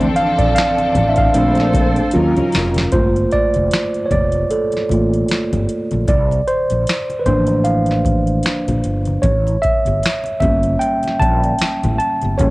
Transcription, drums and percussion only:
0.01 closed hi-hat
0.16 closed hi-hat
0.38 kick, closed hi-hat
0.56 finger snap, snare, closed hi-hat, muted conga
0.78 closed hi-hat, muted conga
0.95 closed hi-hat, high conga, low conga
1.16 kick, closed hi-hat
1.34 closed hi-hat
1.55 closed hi-hat, muted conga
1.60 snare
1.73 kick, closed hi-hat, high conga
1.96 closed hi-hat
2.11 closed hi-hat
2.37 closed hi-hat, high conga, low conga
2.52 snare, open hi-hat
2.74 snare, closed hi-hat, high conga
2.92 kick, closed hi-hat, low conga
3.16 closed hi-hat
3.31 kick, closed hi-hat
3.54 closed hi-hat, high conga
3.71 finger snap, snare, closed hi-hat, muted conga
3.94 closed hi-hat
4.11 kick, closed hi-hat, high conga, low conga
4.32 closed hi-hat
4.51 closed hi-hat, muted conga
4.72 closed hi-hat, muted conga
4.77 snare
4.89 kick, closed hi-hat, high conga
5.13 closed hi-hat
5.28 finger snap, snare, closed hi-hat, muted conga
5.53 closed hi-hat, muted conga, high conga, low conga
5.69 closed hi-hat
5.91 closed hi-hat, high conga
6.08 kick, closed hi-hat, low conga
6.31 closed hi-hat, muted conga
6.48 closed hi-hat
6.70 closed hi-hat, high conga
6.87 finger snap, snare, closed hi-hat
7.10 closed hi-hat, muted conga
7.26 kick, closed hi-hat, high conga, low conga
7.47 closed hi-hat
7.65 closed hi-hat, muted conga
7.86 closed hi-hat
7.91 snare
8.05 kick, closed hi-hat, high conga
8.27 closed hi-hat
8.43 finger snap, snare, closed hi-hat, muted conga
8.68 closed hi-hat, muted conga, high conga, low conga
8.84 closed hi-hat
9.05 closed hi-hat, high conga
9.23 kick, closed hi-hat, muted conga, low conga
9.47 closed hi-hat, muted conga
9.63 kick, closed hi-hat
9.85 closed hi-hat, high conga
10.03 finger snap, snare, closed hi-hat, muted conga
10.24 closed hi-hat, muted conga
10.40 kick, closed hi-hat, high conga, low conga
10.63 closed hi-hat
10.81 closed hi-hat, muted conga
11.03 closed hi-hat, muted conga
11.08 snare
11.20 kick, closed hi-hat, high conga
11.44 closed hi-hat
11.59 finger snap, snare, closed hi-hat
11.83 closed hi-hat, muted conga, high conga, low conga
12.00 closed hi-hat
12.22 closed hi-hat, high conga
12.39 kick, closed hi-hat, muted conga, low conga

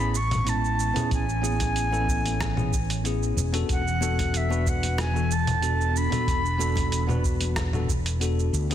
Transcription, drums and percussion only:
0.00 shaker
0.15 shaker
0.31 closed hi-hat, low conga, shaker
0.47 closed hi-hat, shaker
0.65 shaker
0.80 shaker
0.96 closed hi-hat, low conga, shaker
1.11 kick, closed hi-hat, shaker
1.29 shaker
1.44 high conga, shaker
1.60 kick, closed hi-hat, low conga, shaker
1.76 closed hi-hat, shaker
1.93 high conga, shaker
2.08 kick, shaker
2.25 closed hi-hat, high conga, shaker
2.40 kick, cross-stick, closed hi-hat, low conga, shaker
2.57 low conga, shaker
2.73 kick, shaker
2.90 closed hi-hat, shaker
3.05 closed hi-hat, shaker
3.23 shaker
3.38 shaker
3.54 closed hi-hat, shaker
3.69 kick, closed hi-hat, shaker
3.88 shaker
4.01 high conga, shaker
4.19 kick, closed hi-hat, low conga, shaker
4.34 closed hi-hat, shaker
4.50 high conga, shaker
4.66 kick, shaker
4.83 closed hi-hat, high conga, shaker
4.98 cross-stick, closed hi-hat, low conga, shaker
5.16 shaker
5.31 shaker
5.47 closed hi-hat, low conga, shaker
5.62 closed hi-hat, shaker
5.81 shaker
5.96 shaker
6.12 closed hi-hat, low conga, shaker
6.27 kick, closed hi-hat, shaker
6.46 shaker
6.59 high conga, shaker
6.76 kick, closed hi-hat, low conga, shaker
6.92 closed hi-hat, shaker
7.09 high conga, low conga, shaker
7.24 kick, shaker
7.41 closed hi-hat, high conga, shaker
7.56 kick, cross-stick, closed hi-hat, low conga, shaker
7.73 low conga, shaker
7.89 kick, shaker
8.06 closed hi-hat, shaker
8.21 closed hi-hat, shaker
8.39 shaker
8.54 shaker
8.71 closed hi-hat

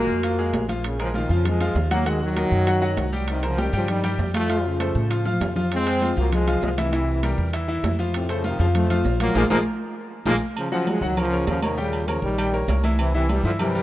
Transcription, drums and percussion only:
0.23 high conga, high timbale
0.38 high conga
0.54 high conga, high timbale, low timbale
0.69 high conga, high timbale
0.84 high conga, high timbale
0.99 high conga, high timbale
1.14 high conga, low timbale
1.30 high conga
1.45 high conga, low conga, high timbale
1.60 high conga, low conga, high timbale
1.76 high conga, low timbale
1.91 high conga, high timbale
2.06 high conga, high timbale
2.21 high conga
2.36 high conga, high timbale, low timbale
2.52 high conga
2.67 high conga, high timbale
2.82 high conga
2.97 high conga, high timbale, low timbale
3.12 high conga
3.28 high conga, high timbale
3.43 high conga, high timbale
3.58 high conga, low timbale
3.73 high conga
3.88 high conga, low conga, high timbale
4.04 high conga, low conga, high timbale
4.19 high conga, low timbale
4.34 high conga, high timbale
4.49 high conga, high timbale
4.65 high conga
4.80 high conga, high timbale, low timbale
4.95 high conga
5.11 high timbale
5.26 low conga
5.41 low conga, high timbale, low timbale
5.56 low conga
5.72 high timbale
5.86 high conga, high timbale
6.02 high conga, low timbale
6.17 high conga
6.32 high conga, low conga, high timbale
6.47 high conga, low conga, high timbale
6.63 low timbale
6.78 high conga, high timbale
6.93 high conga, high timbale
7.08 high conga
7.23 high conga, high timbale, low timbale
7.38 high conga
7.53 high conga, high timbale
7.68 high conga
7.84 high conga, high timbale, low timbale
7.99 high conga
8.14 high conga, high timbale
8.29 high conga, high timbale
8.44 high conga, low timbale
8.60 high conga
8.75 high conga, low conga, high timbale
8.90 high conga, low conga, high timbale
9.05 high conga, low timbale
9.20 high conga, high timbale
9.35 high conga, high timbale
9.50 high conga, high timbale
10.26 high conga, high timbale
10.56 high conga, low agogo
10.72 high conga
10.87 high conga, low timbale, low agogo
11.02 high conga
11.17 high conga, low conga, low agogo
11.32 high conga
11.47 high conga, low timbale, low agogo
11.62 high conga, low agogo
11.78 high conga
11.93 high conga, low agogo
12.08 high conga, low timbale, low agogo
12.23 high conga
12.38 high conga, low agogo
12.54 high conga
12.68 high conga, low timbale, low agogo
12.84 high conga, low agogo
12.99 high conga, low agogo
13.14 high conga
13.29 high conga, low timbale, low agogo
13.44 high conga
13.59 high conga, low conga, low agogo
13.75 high conga, low conga

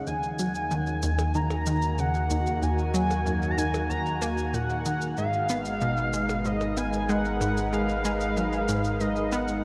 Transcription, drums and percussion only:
0.07 shaker
0.23 shaker
0.39 shaker
0.55 shaker
0.71 shaker
0.87 shaker
1.02 shaker
1.19 percussion blips, shaker
1.34 shaker
1.50 percussion blips, shaker
1.66 shaker
1.82 shaker
1.98 shaker
2.14 shaker
2.30 shaker
2.47 shaker
2.63 shaker
2.79 shaker
2.94 shaker
3.11 percussion blips, shaker
3.27 shaker
3.42 shaker
3.58 shaker
3.74 percussion blips, shaker
3.90 shaker
4.06 shaker
4.22 shaker
4.38 shaker
4.54 shaker
4.70 shaker
4.85 shaker
5.01 shaker
5.17 shaker
5.33 shaker
5.49 shaker
5.65 shaker
5.81 shaker
5.97 shaker
6.13 shaker
6.29 percussion blips, shaker
6.45 shaker
6.61 percussion blips, shaker
6.77 shaker
6.93 shaker
7.09 shaker
7.25 shaker
7.41 shaker
7.57 shaker
7.73 shaker
7.89 shaker
8.05 shaker
8.21 shaker
8.37 shaker
8.53 shaker
8.69 shaker
8.84 shaker
9.00 shaker
9.16 shaker
9.32 shaker
9.48 shaker

